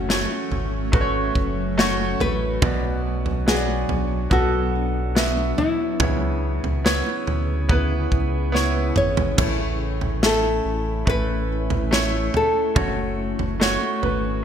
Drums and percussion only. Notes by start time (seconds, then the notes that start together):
0.10 snare
0.52 floor tom
0.93 kick, floor tom
1.35 kick
1.79 snare
2.20 floor tom
2.62 kick, floor tom
3.26 floor tom
3.48 snare
3.89 floor tom
4.31 kick, floor tom
5.16 snare
5.58 floor tom
6.00 kick, floor tom
6.64 floor tom
6.86 snare
7.27 floor tom
7.69 kick, floor tom
8.12 kick
8.55 snare
8.96 mid tom
9.17 floor tom
9.38 kick, floor tom, crash
10.01 floor tom
10.23 snare
11.07 kick, floor tom
11.70 floor tom
11.93 snare
12.34 floor tom
12.76 kick, floor tom
13.39 floor tom
13.61 snare
14.03 floor tom